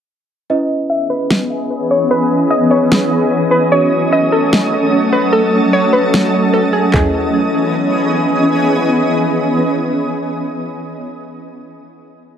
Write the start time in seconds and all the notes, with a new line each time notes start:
0.49 E3 B3 C#4 E4 G#4 B4 D#5
0.90 E5
1.10 B4
1.30 snare
1.91 C#5
2.11 B4
2.51 D#5
2.71 C#5
2.92 snare
3.51 B4
3.71 F#3 A3 F#4 A4 C#5
4.13 D#5
4.32 A4
4.53 snare
5.13 B4
5.33 A4
5.73 C#5
5.93 B4
6.14 snare
6.53 A4
6.73 G#4
6.94 E3 B3 C#4 E4 G#4 B4 D#5, kick, clap, floor tom